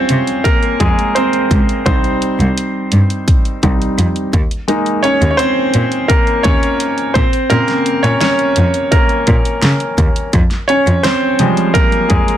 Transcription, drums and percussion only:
0.09 closed hi-hat
0.27 closed hi-hat
0.45 kick, closed hi-hat
0.63 closed hi-hat
0.80 kick, closed hi-hat
0.99 closed hi-hat
1.16 closed hi-hat
1.33 closed hi-hat
1.51 kick, closed hi-hat
1.69 closed hi-hat
1.86 kick, closed hi-hat
2.04 closed hi-hat
2.22 closed hi-hat
2.40 closed hi-hat
2.58 closed hi-hat
2.92 closed hi-hat
3.10 closed hi-hat
3.28 kick, closed hi-hat
3.45 closed hi-hat
3.63 kick, closed hi-hat
3.82 closed hi-hat
3.99 closed hi-hat
4.16 closed hi-hat
4.33 kick, closed hi-hat
4.51 closed hi-hat
4.68 closed hi-hat
4.86 closed hi-hat
5.04 closed hi-hat
5.22 closed hi-hat
5.39 closed hi-hat
5.74 closed hi-hat
5.92 closed hi-hat
6.10 kick, closed hi-hat
6.27 closed hi-hat
6.44 kick, closed hi-hat
6.63 closed hi-hat
6.80 closed hi-hat
6.98 closed hi-hat
7.15 kick, closed hi-hat
7.33 closed hi-hat
7.50 closed hi-hat
7.68 snare, closed hi-hat
7.86 closed hi-hat
8.04 closed hi-hat
8.21 snare, closed hi-hat
8.39 closed hi-hat
8.56 closed hi-hat
8.74 closed hi-hat
8.92 kick, closed hi-hat
9.09 closed hi-hat
9.27 kick, closed hi-hat
9.45 closed hi-hat
9.62 snare, closed hi-hat
9.80 closed hi-hat
9.98 kick, closed hi-hat
10.16 closed hi-hat
10.33 kick, closed hi-hat
10.51 snare, closed hi-hat
10.69 closed hi-hat
10.87 closed hi-hat
11.04 snare, closed hi-hat
11.39 closed hi-hat
11.57 closed hi-hat
11.75 kick, closed hi-hat
11.92 closed hi-hat
12.10 kick, closed hi-hat
12.28 closed hi-hat

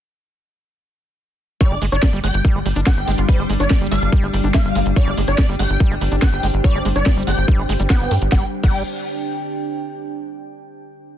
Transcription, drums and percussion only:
1.61 kick, closed hi-hat
1.82 open hi-hat
1.92 closed hi-hat
2.03 kick, snare, closed hi-hat
2.24 open hi-hat
2.34 closed hi-hat
2.45 kick, closed hi-hat
2.66 open hi-hat
2.76 closed hi-hat
2.87 kick, snare, closed hi-hat
3.08 open hi-hat
3.18 closed hi-hat
3.29 kick, closed hi-hat
3.50 open hi-hat
3.60 closed hi-hat
3.70 kick, snare, closed hi-hat
3.91 open hi-hat
4.02 closed hi-hat
4.12 kick, closed hi-hat
4.33 open hi-hat
4.44 closed hi-hat
4.54 kick, snare, closed hi-hat
4.75 open hi-hat
4.86 closed hi-hat
4.96 kick, closed hi-hat
5.17 open hi-hat
5.28 closed hi-hat
5.38 kick, snare, closed hi-hat
5.59 open hi-hat
5.70 closed hi-hat
5.80 kick, closed hi-hat
6.01 open hi-hat
6.12 closed hi-hat
6.22 kick, snare, closed hi-hat
6.43 open hi-hat
6.54 closed hi-hat
6.64 kick, closed hi-hat
6.85 open hi-hat
6.96 closed hi-hat
7.06 kick, snare, closed hi-hat
7.27 open hi-hat
7.38 closed hi-hat
7.48 kick, closed hi-hat
7.69 open hi-hat
7.80 closed hi-hat
7.90 kick, snare, closed hi-hat
8.11 open hi-hat
8.22 closed hi-hat
8.32 kick, snare
8.63 kick, crash

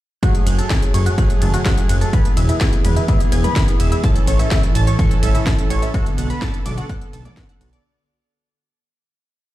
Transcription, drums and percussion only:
0.23 kick, closed hi-hat, ride
0.35 closed hi-hat
0.47 closed hi-hat, ride
0.59 closed hi-hat
0.70 kick, snare, closed hi-hat, ride
0.82 closed hi-hat
0.94 closed hi-hat, ride
1.06 closed hi-hat
1.18 kick, closed hi-hat, ride
1.30 closed hi-hat
1.42 closed hi-hat, mid tom, ride
1.54 closed hi-hat
1.66 kick, snare, closed hi-hat, ride
1.78 closed hi-hat
1.89 closed hi-hat, ride
2.01 closed hi-hat
2.13 kick, closed hi-hat, ride
2.25 closed hi-hat
2.37 closed hi-hat, ride
2.49 closed hi-hat
2.61 kick, snare, closed hi-hat, ride
2.73 closed hi-hat
2.85 closed hi-hat, mid tom, ride
2.96 closed hi-hat
3.08 kick, closed hi-hat, mid tom, ride
3.20 closed hi-hat
3.32 closed hi-hat, ride
3.44 closed hi-hat, mid tom
3.56 kick, snare, closed hi-hat, ride
3.68 closed hi-hat
3.80 closed hi-hat, ride
3.92 closed hi-hat
4.04 kick, closed hi-hat, ride
4.16 closed hi-hat
4.27 closed hi-hat, ride
4.39 closed hi-hat
4.51 kick, snare, closed hi-hat, ride
4.63 closed hi-hat
4.75 closed hi-hat, ride
4.87 closed hi-hat
4.99 kick, closed hi-hat, ride
5.11 closed hi-hat
5.23 closed hi-hat, mid tom, ride
5.35 closed hi-hat
5.47 kick, snare, closed hi-hat, ride
5.59 closed hi-hat
5.70 closed hi-hat, ride
5.82 closed hi-hat
5.94 kick, closed hi-hat, ride
6.06 closed hi-hat
6.18 closed hi-hat, ride
6.30 closed hi-hat
6.42 kick, snare, closed hi-hat, ride
6.54 closed hi-hat
6.66 closed hi-hat, mid tom, ride
6.78 closed hi-hat
6.89 kick, closed hi-hat, mid tom, ride
7.01 closed hi-hat
7.13 closed hi-hat, ride
7.25 closed hi-hat, mid tom
7.37 kick, snare, closed hi-hat, ride
7.49 closed hi-hat
7.61 closed hi-hat, ride
7.73 closed hi-hat

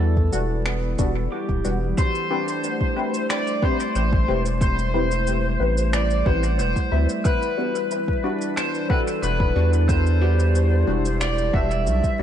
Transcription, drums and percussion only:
0.17 kick
0.33 shaker
0.66 finger snap
0.99 kick, shaker
1.49 kick
1.65 shaker
1.98 kick, shaker
2.15 shaker
2.48 shaker
2.64 shaker
2.81 kick
3.14 shaker
3.30 finger snap, shaker
3.47 shaker
3.62 kick
3.80 shaker
3.96 shaker
4.13 kick
4.46 shaker
4.61 kick, shaker
4.79 shaker
5.11 shaker
5.27 shaker
5.77 shaker
5.93 finger snap, shaker
6.10 shaker
6.26 kick
6.43 shaker
6.59 shaker
6.76 kick, shaker
7.09 shaker
7.25 kick, shaker
7.42 shaker
7.75 shaker
7.91 shaker
8.08 kick
8.41 shaker
8.57 finger snap, shaker
8.75 shaker
8.90 kick
9.08 shaker
9.23 shaker
9.40 kick
9.73 shaker
9.89 kick, shaker
10.07 shaker
10.39 shaker
10.55 shaker
11.05 shaker
11.21 finger snap, shaker
11.38 shaker
11.54 kick
11.71 shaker
11.87 shaker
12.04 kick, shaker

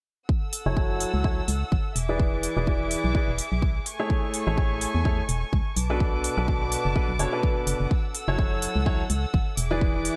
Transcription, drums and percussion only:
0.29 kick
0.53 open hi-hat
0.77 kick
1.00 open hi-hat
1.24 kick
1.48 open hi-hat
1.72 kick
1.96 open hi-hat
2.20 kick
2.43 open hi-hat
2.67 kick
2.91 open hi-hat
3.15 kick
3.38 open hi-hat
3.62 kick
3.86 open hi-hat
4.10 kick
4.34 open hi-hat
4.58 kick
4.81 open hi-hat
5.05 kick
5.29 open hi-hat
5.53 kick
5.76 open hi-hat
6.00 kick
6.24 open hi-hat
6.48 kick
6.72 open hi-hat
6.96 kick
7.19 open hi-hat
7.43 kick
7.67 open hi-hat
7.91 kick
8.15 open hi-hat
8.39 kick
8.62 open hi-hat
8.86 kick
9.10 open hi-hat
9.34 kick
9.57 open hi-hat
9.81 kick
10.05 open hi-hat

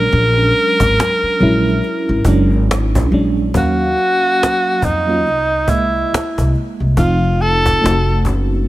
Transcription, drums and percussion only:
0.11 cajon slap
0.37 cajon slap
0.54 cajon slap
0.80 cajon bass
1.00 cajon slap
1.22 cajon slap
1.40 cajon slap
1.65 cajon slap
1.68 cajon slap
1.83 cajon slap
2.08 cajon slap
2.25 cajon bass
2.51 cajon slap
2.71 cajon slap
2.95 cajon bass, cajon slap
3.11 cajon slap
3.37 cajon slap
3.54 cajon bass
3.80 cajon slap
3.97 cajon slap
4.23 cajon slap
4.43 cajon slap
4.65 cajon slap
4.82 cajon bass
5.08 cajon slap
5.11 cajon slap
5.26 cajon slap
5.51 cajon slap
5.68 cajon bass
5.94 cajon slap
6.14 cajon slap
6.38 cajon bass, cajon slap
6.54 cajon slap
6.80 cajon slap
6.97 cajon bass
7.23 cajon slap
7.40 cajon slap
7.66 cajon bass
7.86 cajon slap
8.08 cajon slap
8.25 cajon bass
8.51 cajon slap
8.54 cajon slap

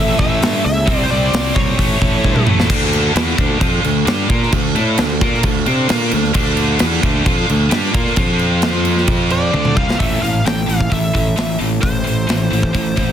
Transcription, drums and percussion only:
0.19 kick
0.42 snare, open hi-hat
0.88 kick, open hi-hat
1.33 snare, open hi-hat
1.56 kick
1.79 kick, open hi-hat
2.02 kick
2.24 kick
2.36 mid tom
2.47 mid tom
2.60 snare
2.70 kick, crash
2.93 crash
3.16 snare, crash
3.38 kick, crash
3.61 kick, crash
3.84 crash
4.07 snare, crash
4.30 kick, crash
4.43 snare
4.52 kick, crash
4.76 crash
4.98 snare, crash
5.21 kick, crash
5.34 snare
5.43 kick, crash
5.66 crash
5.89 snare, crash
6.11 crash
6.24 snare
6.34 kick, crash
6.57 crash
6.79 snare, crash
7.03 kick, crash
7.26 kick, crash
7.49 crash
7.71 snare, crash
7.94 kick, crash
8.07 snare
8.16 kick, crash
8.39 crash
8.62 snare, crash
8.85 crash
8.97 snare
9.07 kick, crash
9.30 crash
9.54 high tom
9.65 mid tom
9.77 kick
9.90 snare
10.00 kick, open hi-hat
10.24 open hi-hat
10.46 snare, open hi-hat
10.69 open hi-hat
10.80 kick
10.92 kick, open hi-hat
11.15 kick, open hi-hat
11.37 snare, open hi-hat
11.61 open hi-hat
11.83 kick, open hi-hat
12.07 open hi-hat
12.29 snare, open hi-hat
12.53 open hi-hat
12.63 kick
12.75 kick, open hi-hat
12.97 kick, snare, open hi-hat

